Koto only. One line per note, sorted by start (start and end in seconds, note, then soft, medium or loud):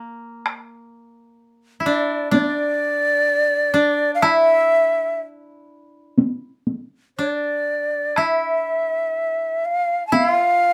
0.00 2.31 A#3 medium
1.80 4.06 E4 soft
1.86 2.31 D4 medium
2.31 3.73 D4 medium
3.74 6.16 D4 medium
4.22 6.49 E4 medium
7.19 9.61 D4 medium
8.17 10.12 E4 medium
10.12 10.29 E4 medium
10.29 10.73 F4 medium